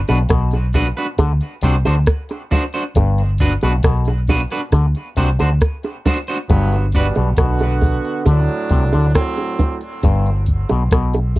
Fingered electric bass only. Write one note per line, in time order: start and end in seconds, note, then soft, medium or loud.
0.10 0.29 B1 medium
0.30 0.90 B1 medium
1.19 1.39 D2 medium
1.63 1.84 C2 loud
1.87 2.06 D2 medium
2.96 3.56 G1 loud
3.63 3.82 B1 medium
3.84 4.44 B1 medium
4.73 4.93 D2 loud
5.17 5.37 C2 medium
5.41 5.60 D2 medium
6.50 7.10 G1 loud
7.17 7.36 B1 medium
7.38 7.98 B1 medium
8.26 8.47 D2 loud
8.71 8.91 C2 medium
8.94 9.13 D2 medium
10.04 10.64 G1 loud
10.71 10.90 B1 medium
10.92 11.39 B1 medium